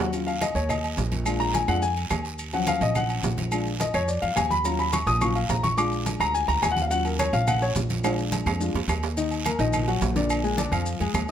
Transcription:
Already playing: D#2
0.00 F#3 F#4 F#5
0.13 F#3 C#4 F4, high conga, low agogo, long guiro, maracas
0.27 F5, high conga, low agogo, maracas
0.41 D#5, high conga, low timbale, low agogo, short guiro, claves, maracas
0.55 D#2 C#5, high conga, low agogo, short guiro, maracas
0.69 D#5, high conga, low conga, low agogo, long guiro, claves, maracas
0.84 high conga, low agogo, maracas
0.97 A#1, high conga, low timbale, short guiro, maracas
1.12 high conga, low agogo, short guiro, maracas
1.25 G#3 D4 F4, high conga, low agogo, long guiro, claves, maracas
1.40 A#5, high conga, maracas
1.54 G#5, high conga, low timbale, low agogo, short guiro, maracas
1.68 F2 G#3 D4 F4 F#5, low agogo, short guiro, claves, maracas
1.82 G#5, high conga, long guiro, maracas
1.96 high conga, low agogo, maracas
2.10 D#2, high conga, low timbale, low agogo, short guiro, claves, maracas
2.25 short guiro, maracas
2.39 high conga, low agogo, long guiro, maracas
2.53 F3 F#3 C#4 F#5, high conga, low agogo, maracas
2.66 F5, high conga, low timbale, low agogo, short guiro, claves, maracas
2.81 A#1 D#5, high conga, low agogo, short guiro, maracas
2.95 F#5, high conga, low conga, low agogo, long guiro, claves, maracas
3.10 high conga, low agogo, maracas
3.23 A#1, high conga, low timbale, short guiro, maracas
3.38 high conga, low agogo, short guiro, maracas
3.52 G#3 D4 F4, high conga, low agogo, long guiro, claves, maracas
3.66 high conga, maracas
3.80 D#5, high conga, low timbale, low agogo, short guiro, maracas
3.94 F2 C#5, high conga, low agogo, short guiro, claves, maracas
4.08 D5, high conga, long guiro, maracas
4.22 F2 F5, high conga, low agogo, maracas
4.36 D#2 G#5, high conga, low timbale, low agogo, short guiro, claves, maracas
4.50 B5, high conga, short guiro, maracas
4.64 F#3 C#4 F4 A#5, high conga, low agogo, long guiro, maracas
4.79 B5, high conga, low agogo, maracas
4.93 C#6, high conga, low timbale, low agogo, short guiro, claves, maracas
5.07 A#1 D#6, high conga, low agogo, short guiro, maracas
5.21 F#3 C#4 F4 C#6, high conga, low conga, low agogo, long guiro, claves, maracas
5.35 F5, high conga, low agogo, maracas
5.49 A#1 A#5, high conga, low timbale, short guiro, maracas
5.63 C#6, high conga, low agogo, short guiro, maracas
5.77 G#3 D4 F4 D6, high conga, low agogo, long guiro, claves, maracas
5.92 high conga, maracas
6.06 high conga, low timbale, low agogo, short guiro, maracas
6.20 D2 A#5, high conga, low agogo, short guiro, claves, maracas
6.34 G#5, high conga, long guiro, maracas
6.48 D2 A#5, high conga, low agogo, maracas
6.62 D#2 G#5, high conga, low timbale, low agogo, short guiro, claves, maracas
6.71 F#5
6.76 high conga, short guiro, maracas
6.82 F5
6.87 F#3 F5
6.91 C#4 F4 F#5, high conga, low agogo, long guiro, maracas
7.05 A#4, high conga, low agogo, maracas
7.19 C#5, high conga, low timbale, low agogo, short guiro, claves, maracas
7.33 A#1 F5, low agogo, short guiro, maracas
7.47 F#5, high conga, low conga, low agogo, long guiro, claves, maracas
7.62 C#5, high conga, low agogo, maracas
7.75 A#1, high conga, low timbale, short guiro, maracas
7.90 high conga, low agogo, short guiro, maracas
8.04 G#3 D4 F4, high conga, high timbale, low agogo, long guiro, claves, maracas
8.18 high conga, maracas
8.32 high conga, low agogo, short guiro, maracas
8.46 F2, high conga, low timbale, low agogo, short guiro, claves, maracas
8.60 G#3 D4 F4, high conga, long guiro, maracas
8.74 F2, high conga, low timbale, low agogo, maracas
8.88 D#2, high conga, low timbale, low agogo, short guiro, claves, maracas
9.03 low timbale, short guiro, maracas
9.17 D#3 D#4 D#5, high conga, low agogo, long guiro, maracas
9.31 high conga, low agogo, maracas
9.45 A#3 A#4 A#5, high conga, low timbale, low agogo, short guiro, claves, maracas
9.59 A#1 D#3 D#4 D#5, high conga, low agogo, short guiro, maracas
9.73 high conga, low conga, low agogo, long guiro, claves, maracas
9.87 F#3 F#4 F#5, high conga, low agogo, maracas
10.01 A#1, high conga, low timbale, short guiro, maracas
10.16 D3 D4 D5, high conga, low agogo, short guiro, maracas
10.30 high conga, low agogo, long guiro, claves, maracas
10.44 G#3 G#4 G#5, high conga, maracas
10.57 D3 D4 D5, high conga, low timbale, low agogo, short guiro, maracas
10.72 F2 F3 F4 F5, high conga, low agogo, short guiro, claves, maracas
10.86 high conga, long guiro, maracas
11.00 F2 G#3 G#4 G#5, high conga, low agogo, maracas
11.14 D#2, high conga, low timbale, low agogo, short guiro, claves, maracas

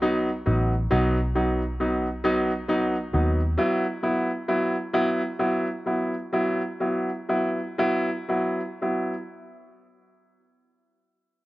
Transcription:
Already playing: B1
0.02 F#3 B3 D#4
0.46 A1 F#3 B3 D#4
0.91 B1 F#3 B3 D#4
1.35 F#3 B3 D#4
1.80 F#3 B3 D#4
2.24 F#3 B3 D#4
2.69 F#3 B3 D#4
3.13 D#2 F#3 B3 D#4
3.58 F#3 B3 E4
4.03 F#3 B3 E4
4.48 F#3 B3 E4
4.93 F#3 B3 E4
5.39 F#3 B3 E4
5.86 F#3 B3 E4
6.32 F#3 B3 E4
6.80 F#3 B3 E4
7.29 F#3 B3 E4
7.78 F#3 B3 E4
8.29 F#3 B3 E4
8.82 F#3 B3 E4

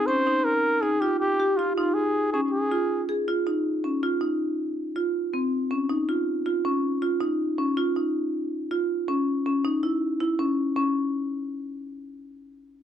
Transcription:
0.07 C#4 C5
0.27 D#4
0.45 A#4
0.82 D#4 G#4
1.01 F4 G4
1.20 G4
1.40 G4
1.57 F4
1.76 D#4 F4
1.94 G#4
2.32 C#4 G#4
2.51 G#4
2.71 F4
3.09 G#4
3.28 F4
3.47 D#4
3.84 C#4
4.03 F4
4.21 D#4
4.96 F4
5.34 C4
5.71 C#4
5.89 D#4
6.09 F4
6.46 F4
6.65 C#4
7.02 F4
7.21 D#4
7.58 C#4
7.77 F4
7.96 D#4
8.71 F4
9.08 C#4
9.46 C#4
9.65 D#4
9.83 E4
10.20 E4
10.39 C#4
10.76 C#4

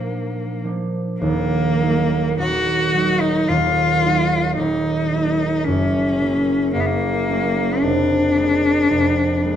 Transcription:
Already playing: A#2 F3 A#3 D4 F#4 A#4
0.64 F3 A#3 D4
1.20 D#1 D#2 A#3
1.81 F#3 A#3 D#4
2.39 D#1 D#2 F#4
2.94 F#3 A#3 D#4
3.21 D#4
3.49 D#1 D#2 F4
4.03 F#3 A#3 D#4
4.57 D#1 D#2 D#4
5.13 F#3 A#3 D#4
5.64 F#1 F#2 C#4
6.21 F#3 A#3 C#4
6.73 F#1 F#2 A#3
6.80 B3
6.86 A#3
7.29 F#3 A#3 C#4
7.81 F1 F2 D4
8.36 G#3 A#3
8.90 F1 F2
9.44 G#3 A#3

